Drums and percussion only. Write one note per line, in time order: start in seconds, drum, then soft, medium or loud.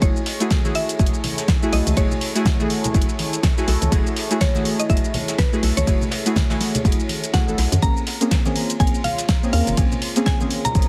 0.01 kick loud
0.01 closed hi-hat medium
0.01 ride medium
0.01 shaker medium
0.16 shaker soft
0.26 snare medium
0.26 open hi-hat loud
0.26 ride medium
0.40 closed hi-hat medium
0.40 shaker medium
0.51 kick loud
0.51 snare loud
0.51 closed hi-hat medium
0.51 ride medium
0.51 shaker medium
0.65 snare soft
0.65 high conga medium
0.65 shaker soft
0.75 open hi-hat medium
0.75 ride medium
0.89 closed hi-hat medium
0.89 shaker medium
0.99 kick loud
0.99 closed hi-hat soft
0.99 ride medium
0.99 shaker medium
1.06 closed hi-hat medium
1.14 shaker soft
1.24 open hi-hat loud
1.24 ride medium
1.24 high conga medium
1.24 low conga medium
1.38 snare medium
1.38 closed hi-hat soft
1.38 shaker medium
1.48 kick loud
1.48 snare loud
1.48 closed hi-hat medium
1.48 ride medium
1.48 shaker medium
1.63 shaker soft
1.73 open hi-hat loud
1.73 open hi-hat medium
1.87 closed hi-hat medium
1.87 ride soft
1.87 high conga medium
1.87 shaker medium
1.97 kick loud
1.97 closed hi-hat medium
1.97 ride medium
1.97 shaker medium
2.11 low conga medium
2.11 shaker soft
2.21 open hi-hat loud
2.21 ride medium
2.36 closed hi-hat soft
2.36 shaker medium
2.45 kick loud
2.45 snare loud
2.45 closed hi-hat medium
2.45 ride medium
2.45 low conga medium
2.45 shaker medium
2.60 high conga medium
2.60 shaker soft
2.70 open hi-hat medium
2.70 ride medium
2.84 closed hi-hat medium
2.84 low conga medium
2.84 shaker medium
2.94 kick loud
2.94 closed hi-hat soft
2.94 ride medium
2.94 shaker medium
3.02 closed hi-hat medium
3.09 shaker soft
3.18 open hi-hat loud
3.18 ride medium
3.18 high conga medium
3.33 closed hi-hat soft
3.33 shaker medium
3.43 kick loud
3.43 snare loud
3.43 closed hi-hat medium
3.43 ride medium
3.43 shaker medium
3.57 snare soft
3.57 shaker soft
3.67 snare soft
3.67 open hi-hat medium
3.67 ride medium
3.82 closed hi-hat medium
3.82 high conga medium
3.82 shaker medium
3.92 kick loud
3.92 closed hi-hat medium
3.92 ride medium
3.92 shaker medium
4.07 shaker soft
4.16 snare soft
4.16 open hi-hat loud
4.16 ride medium
4.31 closed hi-hat medium
4.31 shaker medium
4.40 kick loud
4.40 snare loud
4.40 closed hi-hat medium
4.40 ride medium
4.40 shaker medium
4.55 snare soft
4.55 high conga medium
4.55 shaker soft
4.65 open hi-hat medium
4.65 ride medium
4.80 closed hi-hat medium
4.80 shaker medium
4.90 kick loud
4.90 closed hi-hat soft
4.90 ride medium
4.90 shaker medium
4.97 closed hi-hat medium
5.04 shaker soft
5.14 open hi-hat medium
5.14 ride medium
5.14 high conga medium
5.14 low conga medium
5.28 snare medium
5.28 closed hi-hat medium
5.28 shaker medium
5.38 kick loud
5.38 snare loud
5.38 closed hi-hat medium
5.38 ride medium
5.38 shaker medium
5.53 shaker soft
5.63 open hi-hat medium
5.77 closed hi-hat medium
5.77 ride soft
5.77 high conga medium
5.77 shaker medium
5.87 kick loud
5.87 closed hi-hat medium
5.87 ride medium
5.87 shaker medium
6.01 low conga medium
6.01 shaker soft
6.11 snare medium
6.11 open hi-hat loud
6.11 ride medium
6.26 closed hi-hat medium
6.26 shaker medium
6.36 kick loud
6.36 snare loud
6.36 closed hi-hat medium
6.36 ride medium
6.36 low conga loud
6.36 shaker medium
6.50 snare loud
6.50 ride medium
6.50 high conga medium
6.50 shaker soft
6.61 snare medium
6.61 open hi-hat medium
6.75 closed hi-hat medium
6.75 ride medium
6.75 low conga loud
6.75 shaker medium
6.85 kick loud
6.85 closed hi-hat soft
6.85 ride medium
6.85 shaker medium
6.92 closed hi-hat medium
7.00 shaker soft
7.09 open hi-hat loud
7.09 ride medium
7.09 high conga medium
7.24 closed hi-hat medium
7.24 shaker medium
7.33 kick loud
7.33 snare soft
7.33 snare loud
7.33 closed hi-hat medium
7.33 ride medium
7.33 shaker medium
7.48 shaker soft
7.58 snare loud
7.58 open hi-hat loud
7.58 ride medium
7.72 snare soft
7.72 closed hi-hat medium
7.72 high conga medium
7.72 shaker medium
7.82 kick loud
7.82 closed hi-hat medium
7.82 ride medium
7.82 shaker medium
7.97 shaker soft
8.07 snare soft
8.07 open hi-hat loud
8.07 ride medium
8.21 closed hi-hat medium
8.21 shaker medium
8.31 kick loud
8.31 snare loud
8.31 closed hi-hat medium
8.31 ride medium
8.31 shaker medium
8.45 snare soft
8.45 high conga medium
8.45 shaker soft
8.55 open hi-hat medium
8.55 ride medium
8.70 closed hi-hat medium
8.70 shaker medium
8.80 kick loud
8.80 closed hi-hat soft
8.80 ride medium
8.80 shaker medium
8.87 closed hi-hat medium
8.95 shaker soft
9.04 open hi-hat loud
9.04 ride medium
9.04 high conga medium
9.04 low conga medium
9.18 snare medium
9.18 closed hi-hat medium
9.18 shaker medium
9.29 kick loud
9.29 snare loud
9.29 closed hi-hat medium
9.29 ride medium
9.29 shaker medium
9.43 shaker soft
9.53 open hi-hat loud
9.53 open hi-hat medium
9.67 closed hi-hat medium
9.67 ride soft
9.67 high conga medium
9.67 shaker medium
9.77 kick loud
9.77 closed hi-hat medium
9.77 ride medium
9.77 shaker medium
9.92 low conga medium
9.92 shaker soft
10.02 open hi-hat loud
10.02 ride medium
10.16 closed hi-hat medium
10.16 shaker medium
10.26 kick loud
10.26 snare loud
10.26 closed hi-hat medium
10.26 ride medium
10.26 low conga loud
10.26 shaker medium
10.40 high conga loud
10.40 shaker soft
10.51 open hi-hat loud
10.51 ride medium
10.65 closed hi-hat medium
10.65 low conga medium
10.65 shaker medium
10.75 kick loud
10.75 closed hi-hat soft
10.75 ride medium
10.75 shaker medium
10.82 closed hi-hat medium